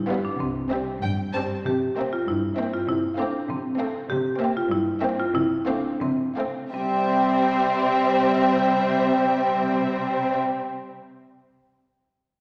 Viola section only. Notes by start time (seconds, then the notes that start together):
0.09 G3
0.72 G3
1.35 G3
1.97 A#3
2.58 A#3
3.19 A3
3.79 A3
4.40 A#3
5.02 A#3
5.67 A3
6.37 A3
6.73 G3